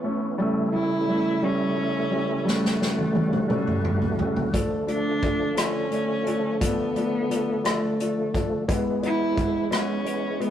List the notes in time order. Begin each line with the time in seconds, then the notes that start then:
Already playing: E3 A3 B3 C#4
0.04 E3 A3 C#4
0.38 C#3 G3 A3 C#4 E4
0.73 G3 A3 C#4 E4
1.08 G3 A3 C#4
1.42 G3 A3 C#4
1.77 A3 C#4
2.10 G3 A3 C#4
2.45 G3 A3 C#4 F#4, snare
2.65 snare
2.79 G3 A3 C#4, snare
2.98 high tom
3.13 G3 A3 C#4, high tom
3.33 mid tom
3.48 G3 A3 C#4, mid tom
3.54 G3
3.67 mid tom
3.83 A3 C#4, mid tom
4.02 floor tom
4.18 G3 A3 C#4, floor tom
4.36 floor tom
4.52 D3 F3 A3 D4, kick, closed hi-hat
4.87 F3 A3 D4, closed hi-hat
4.91 D4
5.22 F3 A3 D4, kick, closed hi-hat
5.56 F3 A3 D4, cross-stick, closed hi-hat
5.60 C#4
5.91 A3 D4, closed hi-hat
6.26 F3 A3 D4, closed hi-hat
6.60 F3 A3 D4, kick, closed hi-hat
6.64 B3
6.95 F3 A3 D4, closed hi-hat
7.29 F3 A3 D4, closed hi-hat
7.64 F3 A3 D4, cross-stick, closed hi-hat
8.00 F3 A3 D4, closed hi-hat
8.34 F3 A3 D4, kick, closed hi-hat
8.68 E3 G#3 B3, kick, closed hi-hat
9.02 E3 G#3 B3 E4, closed hi-hat
9.36 E3 G#3 B3, kick, closed hi-hat
9.71 E3 G#3 B3 C#4, cross-stick, closed hi-hat
10.05 G#3 B3, closed hi-hat
10.40 E3 G#3 B3, closed hi-hat